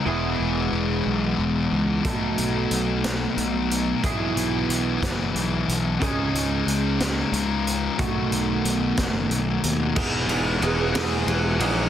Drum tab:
CC |------|------|------|------|
RD |------|------|------|------|
HH |------|xxxxxx|xxxxxx|xxxxxx|
SD |------|---o--|---o--|---o--|
BD |------|o-----|o--o--|o-----|

CC |------|x-----|
RD |------|-xxxxx|
HH |xxxxxx|------|
SD |---o--|---o--|
BD |o--o--|o-----|